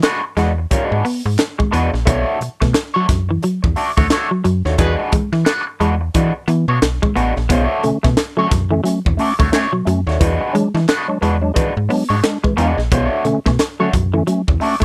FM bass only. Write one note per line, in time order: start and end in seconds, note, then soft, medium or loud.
0.37 0.66 E2 loud
0.92 1.03 G#2 medium
1.26 1.37 G#2 medium
1.73 1.91 E2 loud
1.94 2.05 A#1 medium
2.07 2.25 B1 loud
2.41 2.49 B2 soft
2.62 2.73 B2 loud
3.09 3.39 F#2 medium
3.64 3.75 E2 medium
3.98 4.09 D2 medium
4.45 4.63 F#2 medium
4.65 4.77 D#2 loud
4.79 4.96 E2 loud
5.13 5.21 E3 medium
5.33 5.45 E3 loud
5.80 6.10 E2 loud
6.15 6.32 E3 loud
6.48 6.66 E3 loud
6.68 6.80 B2 medium
6.82 7.00 B1 medium
7.16 7.34 A1 medium
7.37 7.49 A#1 medium
7.50 7.68 B1 loud
7.85 7.93 B2 soft
8.05 8.16 B2 loud
8.51 8.81 F#2 medium
9.06 9.18 E2 medium
9.40 9.52 D2 medium
9.87 10.05 F#2 medium
10.07 10.19 D#2 medium
10.21 10.39 E2 loud
10.55 10.63 E3 soft
10.74 10.87 E3 loud
11.22 11.52 E2 loud
11.77 11.89 G#2 medium
12.10 12.22 G#2 medium
12.58 12.75 E2 medium
12.78 12.90 A#1 medium
12.92 13.09 B1 medium
13.25 13.33 B2 medium
13.46 13.58 B2 loud
13.93 14.23 F#2 loud
14.48 14.60 E2 medium
14.81 14.85 D2 medium